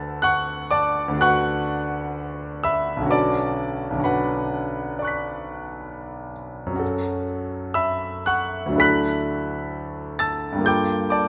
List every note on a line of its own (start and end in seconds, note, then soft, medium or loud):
0.00 1.06 D2 soft
0.00 1.09 D3 soft
0.00 1.12 D4 soft
0.00 1.15 F#4 soft
0.00 1.17 B4 soft
0.00 0.20 A5 medium
0.00 0.20 E6 medium
0.00 0.24 A6 medium
0.22 0.70 F#5 medium
0.22 0.70 C#6 medium
0.22 0.73 F#6 medium
0.71 1.18 D5 medium
0.71 1.18 A5 medium
0.71 1.21 D6 medium
1.08 3.00 D2 medium
1.08 2.99 D3 soft
1.13 3.03 D4 soft
1.13 3.05 F#4 soft
1.21 3.06 B4 soft
1.21 2.62 F#5 medium
1.21 2.62 C#6 medium
1.21 2.66 F#6 medium
2.64 3.07 E5 medium
2.64 3.07 B5 medium
2.64 3.10 E6 medium
2.97 3.89 B1 soft
2.97 3.92 D3 soft
3.03 3.95 C#4 soft
3.03 3.98 F#4 soft
3.09 4.00 B4 soft
3.09 4.00 D5 medium
3.09 4.00 A5 medium
3.09 4.03 D6 medium
3.90 6.71 B1 soft
3.90 6.72 D3 soft
3.97 6.72 C#4 soft
3.97 6.74 F#4 soft
4.04 6.32 B4 medium
4.04 6.32 F#5 medium
4.04 6.35 B5 medium
4.99 6.79 D5 soft
4.99 6.81 C#6 soft
5.04 6.82 F#6 soft
5.04 6.83 B6 soft
6.66 8.69 F#2 soft
6.66 8.67 F#3 soft
6.73 8.72 C#4 soft
6.73 8.73 F#4 soft
6.80 8.75 A4 soft
7.74 8.24 E5 medium
7.74 8.24 B5 medium
7.74 8.27 E6 medium
8.26 8.76 F#5 medium
8.26 8.76 C#6 medium
8.26 8.79 F#6 medium
8.66 10.55 D2 soft
8.66 10.56 F#3 soft
8.72 10.58 D4 soft
8.72 10.60 E4 soft
8.78 10.61 A4 soft
8.78 10.16 B5 medium
8.78 10.17 F#6 medium
8.78 10.20 B6 medium
10.19 10.63 A5 medium
10.19 10.63 E6 medium
10.19 10.66 A6 medium
10.52 11.28 G2 soft
10.52 11.28 G3 soft
10.58 11.28 A#3 soft
10.58 11.28 F4 soft
10.65 11.28 A4 soft
10.65 11.10 G5 medium
10.65 11.09 D6 medium
10.65 11.12 G6 medium
11.10 11.28 D5 medium
11.10 11.28 A5 medium
11.10 11.28 D6 medium